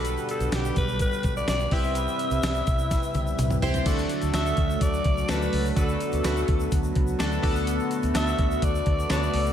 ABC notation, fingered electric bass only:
X:1
M:4/4
L:1/16
Q:1/4=126
K:Bm
V:1 name="Fingered electric bass" clef=bass
B,,,2 z B,,, B,,,2 B,,,3 z B,,,2 B,,,2 =C,,2- | =C,,2 z C,, C,,2 C,,3 z C,,2 C,,2 C,,2 | D,,2 z D,, D,,2 D,,2 D,,2 C,,2 D,,2 C,,2 | D,,2 z D,, D,,2 D,,2 D,,2 C,,2 D,,2 D,,2- |
D,,2 z D,, D,,2 D,,2 D,,2 D,,2 D,,2 C,,2 |]